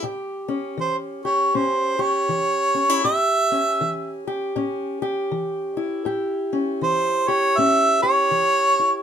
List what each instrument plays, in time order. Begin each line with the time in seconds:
0.03 steel-string acoustic guitar A2 G4
0.48 steel-string acoustic guitar C#4
0.77 steel-string acoustic guitar E3, harmonica C5
1.25 steel-string acoustic guitar G4, harmonica C#5
1.54 steel-string acoustic guitar A2 C#4, harmonica C5
1.99 steel-string acoustic guitar G4, harmonica C#5
2.29 steel-string acoustic guitar E3
2.75 steel-string acoustic guitar C#4
2.89 steel-string acoustic guitar E4
3.04 steel-string acoustic guitar A2 G4, harmonica E5
3.52 steel-string acoustic guitar C#4
3.81 steel-string acoustic guitar E3
4.27 steel-string acoustic guitar G4
4.56 steel-string acoustic guitar A2 C#4
5.02 steel-string acoustic guitar G4
5.31 steel-string acoustic guitar E3
5.77 steel-string acoustic guitar E4
6.05 steel-string acoustic guitar A2 G4
6.53 steel-string acoustic guitar C#4
6.82 steel-string acoustic guitar E3, harmonica C5
7.28 steel-string acoustic guitar G4, harmonica C#5
7.57 steel-string acoustic guitar A2 C#4, harmonica E5
8.03 steel-string acoustic guitar G4, harmonica C#5
8.31 steel-string acoustic guitar E3
8.79 steel-string acoustic guitar E4